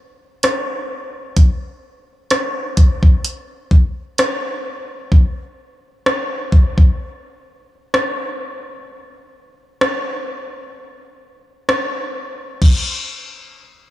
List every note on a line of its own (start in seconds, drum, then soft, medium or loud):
0.43 cross-stick loud
0.43 closed hi-hat medium
1.37 kick loud
1.37 closed hi-hat medium
2.31 cross-stick loud
2.31 closed hi-hat medium
2.77 kick medium
2.77 closed hi-hat medium
3.03 kick medium
3.24 closed hi-hat medium
3.71 kick medium
4.18 cross-stick loud
4.18 closed hi-hat medium
5.12 kick loud
6.06 cross-stick loud
6.52 kick medium
6.78 kick medium
7.94 cross-stick loud
9.81 cross-stick loud
11.69 cross-stick loud
12.62 kick medium
12.62 crash medium